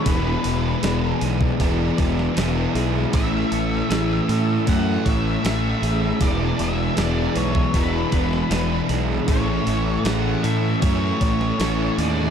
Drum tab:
HH |o-o-o-o-o-o-o-o-|o-o-o-o-o-o-o-o-|o-o-o-o-o-o-o-o-|o-o-o-o-o-o-o-o-|
SD |----o------oo-o-|----o-------o---|----o------oo---|----o------oo---|
BD |o------oo-o-----|o-------o-o-----|o------oo-o-----|o-------o-o-----|